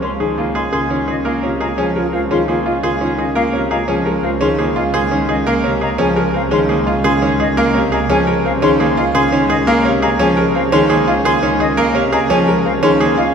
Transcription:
Already playing: C#2
0.02 C#4 A#4 C6
0.20 D#3 G#4
0.38 A#3 F4 F5
0.55 G#4 D#5 C6
0.72 C#2 C#3 F4 G#4 A#4 C6
0.90 D#3 C#4 F4
1.08 F4 G#4 D#5
1.24 A#3 F4 A#4 F5
1.42 C3 C#4 F4
1.60 F4 G#4 D#5 A#5
1.77 F3 C#4 F4 G#4 G#5
1.95 G#3 F4 A#4
2.12 C4 F4 A#4 F5
2.31 D#3 C#4 F4 G#4 C6
2.47 A#3 F4 G#4
2.66 F4 D#5 F5
2.83 C#3 F4 G#4 A#4 C6
3.01 D#3 C#4 F4
3.18 F4 G#4 D#5
3.35 A#3 F4 A#4 F5
3.53 C3 C#4 F4
3.70 F4 G#4 D#5 A#5
3.88 F3 C#4 F4 G#4 G#5
4.06 G#3 F4 A#4
4.23 C4 F4 A#4 F5
4.41 D#3 C#4 F4 G#4 C6
4.58 A#3 F4 G#4
4.76 F4 D#5 F5
4.94 C#3 G#4 A#4 C6
5.11 D#3 C#4
5.29 G#4 D#5
5.46 A#3 A#4 F5
5.64 C3 C#4
5.81 G#4 D#5 A#5
5.98 F3 C#4 G#4 G#5
6.16 G#3 A#4
6.34 C4 A#4 F5
6.51 D#3 C#4 G#4 C6
6.69 A#3 G#4
6.86 F4 D#5 F5
7.04 C#3 G#4 A#4 C6
7.22 D#3 C#4
7.40 G#4 D#5
7.57 A#3 A#4 F5
7.75 C3 C#4
7.92 G#4 D#5 A#5
8.09 F3 C#4 G#4 G#5
8.27 G#3 A#4
8.45 C4 A#4 F5
8.62 D#3 C#4 G#4 C6
8.80 A#3 G#4
8.97 F4 D#5 F5
9.14 C#3 G#4 A#4 C6
9.32 D#3 C#4
9.50 G#4 D#5
9.67 A#3 A#4 F5
9.85 C3 C#4
10.02 G#4 D#5 A#5
10.19 F3 C#4 G#4 G#5
10.37 G#3 A#4
10.55 C4 A#4 F5
10.72 D#3 C#4 G#4 C6
10.90 A#3 G#4
11.08 F4 D#5 F5
11.25 C#3 G#4 A#4 C6
11.42 D#3 C#4
11.60 G#4 D#5
11.77 A#3 A#4 F5
11.94 C3 C#4
12.12 G#4 D#5 A#5
12.30 F3 C#4 G#4 G#5
12.48 G#3 A#4
12.65 C4 A#4 F5
12.83 D#3 C#4 G#4 C6
13.00 A#3 G#4
13.17 F4 D#5 F5

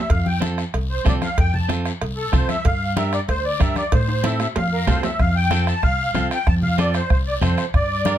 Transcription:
0.10 F2 F5, bombo low, bombo rim, cowbell, long guiro
0.26 G5, high conga
0.41 C4 F4 A4, bombo rim, high conga, short guiro
0.58 bombo rim, short guiro
0.74 C2, bombo rim, cowbell, high conga, long guiro
0.90 C5
1.05 C2 C4 F4 A4 D5, bombo low, bombo rim, high conga, low timbale, short guiro
1.22 F5, bombo rim, high conga, short guiro
1.37 F2 G5, bombo low, bombo rim, cowbell, high conga, long guiro
1.53 A5, low conga
1.69 C4 F4 A4, bombo rim, high conga, short guiro
1.85 bombo rim, short guiro
2.01 C2, bombo rim, cowbell, high conga, long guiro
2.17 A4
2.33 C2 C4 F4 A4 C5, bombo low, bombo rim, high conga, low conga, short guiro
2.48 E5, bombo rim, high conga, short guiro
2.65 G2 F5, bombo low, bombo rim, cowbell, high conga, long guiro
2.96 D4 G4 A#4 E5, bombo rim, high conga, short guiro
3.13 D5, bombo rim, short guiro
3.28 D2 C5, bombo rim, cowbell, high conga, long guiro
3.45 D5
3.60 G2 D4 G4 A#4 E5, bombo low, bombo rim, high conga, short guiro
3.76 D5, bombo rim, high conga, short guiro
3.92 A2 C5, bombo low, bombo rim, cowbell, high timbale, long guiro
4.08 high timbale
4.23 C4 E4 A4 E5, bombo rim, high conga, high timbale, short guiro
4.40 E5, bombo rim, low timbale, short guiro
4.55 F2 F5, bombo rim, cowbell, high conga, low timbale, long guiro
4.73 A#4
4.87 C2 C4 F4 A4 C5, bombo low, bombo rim, high conga, low conga, low timbale, short guiro
5.03 E5, bombo rim, high conga, low timbale, short guiro
5.19 F2 F5, bombo low, bombo rim, high conga, long guiro
5.36 G5
5.51 C4 F4 A4, bombo rim, high conga, short guiro
5.67 A5, bombo rim, short guiro
5.83 C2 F5, bombo low, bombo rim, high conga, long guiro
6.14 C2 C4 F4 A4, bombo rim, high conga, short guiro
6.31 G5, bombo rim, short guiro
6.47 F2 A5, bombo low, bombo rim, high conga, long guiro
6.62 F5, low conga
6.78 C4 F4 A4 D5, bombo rim, high conga, short guiro
6.94 C5, bombo rim, short guiro
7.10 C2 C5, bombo low, bombo rim, high conga, long guiro
7.27 D5
7.41 F2 C4 F4 A4 C5, bombo rim, high conga, low conga, short guiro
7.58 bombo rim, short guiro
7.74 G2 D5, bombo low, bombo rim, high conga, long guiro
8.05 D4 G4 A#4, bombo rim, high conga, short guiro

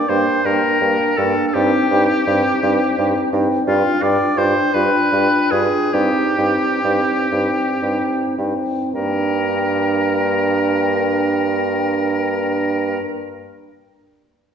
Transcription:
Already playing: D5
0.08 G2 A#3 D4 C5 G5
0.45 G2 A#3 D4 A#4 G5
0.81 G2 A#3 D4 G5
1.17 G2 A#3 D4 A4 G5
1.48 A4
1.54 G2 C4 D#4 G4 G5
1.90 G2 C4 D#4 G5
2.27 G2 C4 D#4 G5
2.63 G2 C4 D#4 G5
2.98 G2 C4 D#4 G5
3.32 G2 C4 D#4 G5
3.66 G2 D4 F4 G5
4.02 G2 D4 F4 D5 G5
4.37 G2 D4 F4 C5 G5
4.74 G2 D4 F4 B4 G5
5.12 G2 D4 F4 G5
5.51 G2 D4 F4 G#4 G5
5.93 G2 C4 D#4 G4 G5
6.38 G2 C4 D#4 G5
6.83 G2 C4 D#4 G5
7.31 G2 C4 D#4 G5
7.82 G2 C4 D#4 G5
8.37 G2 C4 D#4 G5
8.93 G2 A#3 D4 A#4 G5

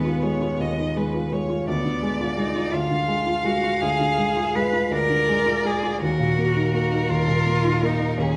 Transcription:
Already playing: D#2 D#3 G#3 B3 F4 B4
0.05 F4
0.22 G#3 C#5
0.41 F4
0.60 D#2 D#5
0.78 D#3
0.96 G#3 B4
1.14 F4
1.32 G#3 C#5
1.49 F4
1.67 D2 B3 D5
1.85 D3
2.03 G#3
2.21 F4
2.37 G#3 D#4
2.56 F4
2.73 D2 F4 F5
2.91 D3
3.08 G#3
3.27 F4
3.44 G#3 F#4
3.64 F4
3.81 D2 G#4
4.00 D3
4.18 G#3
4.37 F4
4.55 G#3 B4
4.73 F4
4.91 D2 A#4 D5
5.09 D3
5.29 G#3
5.46 F4
5.64 G#3 G#4
5.83 F4
6.02 D#2 F#4 A#4
6.19 A#2
6.38 A#3
6.56 D#4
6.74 A#3 F#4
6.92 D#4
7.10 D#2 F4
7.28 A#2
7.46 A#3
7.64 D#4
7.82 A#3 D#4
8.00 D#4
8.18 D#2 C#4 G#4

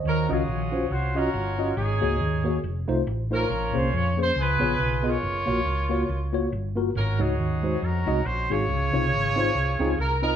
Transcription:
Already playing: C5 D#5
0.04 D#2 D#3 C#4 F#4 A#4
0.29 C#2 C#4 F4 F#4 G#4 D#5
0.48 A#1
0.72 C#4 F4 F#4 C5
0.90 C2 F4 F#4 C5
1.15 C#4 F4 F#4 A#4 D#5
1.34 G1
1.58 C#4 F4 F#4 D#5
1.77 G#1 G#2 C#4 D#4 G#4
2.01 C#2 A#3 F#4 G#4 C#5
2.21 D#2
2.44 A#3 F#4 G#4 C#5
2.64 F1
2.88 C2 A3 D#4 F4 C5
3.07 A1
3.30 A3 C#4 D#4 F4 A#4 C5
3.50 A#1 A#2
3.73 C2 A#3 C#4 G#4 C5
3.93 F2 C#5
4.17 A#3 C#4 G#4 C5
4.36 C#2 C#3 F4 G#4
4.40 B4
4.59 A#1 B3 F4 G#4 C#5
4.80 B1
5.03 B3 F4 G#4 A#4 D#5
5.07 C#5
5.23 F#1
5.46 A#1 A#3 F4 F#4 C#5
5.66 C#2
5.89 A#3 F4 F#4 C#5
6.09 C#2
6.33 A#3 F4 F#4 C#5
6.52 G1
6.76 A#3 F4 F#4 A#4
6.95 G#1 G#2 C#4 F#4 A#4
7.19 C#2 G#3 C#4 D#4 F#4 G#4 C#5
7.39 D#2
7.63 G#3 D#4 F#4 C5
7.82 F2 C#4 F#4 A#4
8.06 C2 G#3 D#4 F#4 D#5
8.25 A#1 C5
8.50 G#1 G#3 D#4 F4 F#4 G#4 C#5
8.69 C#2 C#3
8.93 C2 C4 D#4 F4 C#5
9.12 G#1
9.36 C4 D#4 F4 C5
9.55 C2
9.80 C#2 C4 D#4 F4 G#4
9.98 C2 A#4
10.22 C4 D#4 F4 A#4 D#5

